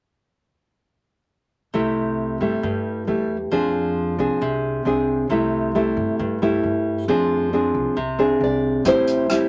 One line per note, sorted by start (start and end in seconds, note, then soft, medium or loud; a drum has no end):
1.74 2.37 C2 medium
1.74 2.61 C3 soft
1.74 2.37 G3 soft
1.74 2.37 A3 medium
1.74 2.38 E4 medium
2.40 2.51 G2 medium
2.40 3.04 G3 soft
2.40 3.04 A3 soft
2.40 3.04 E4 medium
2.63 3.04 G2 medium
2.63 3.50 G2 soft
3.07 3.49 E2 medium
3.07 3.36 G3 soft
3.07 3.36 A3 soft
3.07 3.36 E4 soft
3.51 4.15 F2 medium
3.51 4.38 F3 soft
3.51 4.15 C4 soft
3.51 4.15 D4 soft
3.51 4.15 G#4 medium
4.18 4.29 C2 medium
4.18 4.82 C4 medium
4.18 4.82 D4 soft
4.18 4.82 G#4 medium
4.41 4.82 C2 medium
4.41 5.28 C3 soft
4.85 5.26 C2 medium
4.85 5.26 C4 soft
4.85 5.27 D4 soft
4.85 5.27 G#4 medium
5.29 5.92 C2 medium
5.29 6.17 C3 soft
5.29 5.71 G3 medium
5.29 5.71 A3 soft
5.29 5.71 E4 medium
5.75 6.38 G3 medium
5.75 6.38 A3 medium
5.75 6.38 E4 medium
5.97 6.07 G2 medium
6.19 6.60 G2 medium
6.19 7.06 G2 soft
6.42 7.04 G3 medium
6.42 7.04 A3 medium
6.42 7.05 E4 medium
6.63 7.05 G2 medium
7.08 7.70 F2 medium
7.08 7.95 F3 medium
7.08 7.49 C4 medium
7.08 7.49 D4 soft
7.08 7.49 G#4 medium
7.53 7.96 C4 medium
7.53 7.97 D4 soft
7.53 7.97 G#4 soft
7.74 7.84 C2 medium
7.97 8.38 C2 medium
7.97 8.83 C3 soft
8.19 8.81 C4 medium
8.19 8.82 D4 medium
8.19 8.82 G#4 medium
8.40 8.82 C2 medium
8.40 8.88 D5 medium
8.85 9.48 A1 medium
8.85 9.49 A2 soft
8.85 9.26 G3 medium
8.85 9.26 C4 medium
8.85 9.26 E4 medium
8.85 9.49 C5 medium
8.85 kick soft
8.85 closed hi-hat soft
9.07 closed hi-hat soft
9.30 9.49 G3 medium
9.30 9.49 C4 soft
9.30 9.49 E4 medium
9.30 cross-stick medium
9.30 closed hi-hat soft